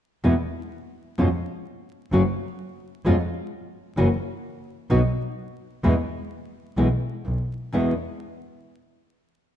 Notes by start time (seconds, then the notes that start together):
0.24 E2 B2 E3 G#3 B3 E4
1.18 F2 B2 F3 G#3 C#4 F4
2.12 F#1 C#3 F#3 A3 C#4 F#4
3.05 F2 B2 F3 G#3 C#4 F4
3.97 F#1 C#3 E3 A#3 C#4 F#4
4.90 B1 B2 F#3 B3 D#4 F#4
5.83 E2 B2 E3 G#3 B3 E4
6.77 B1 B2 E3 G#3 B3 E4
7.25 B1
7.72 E2 B2 E3 G#3 B3 E4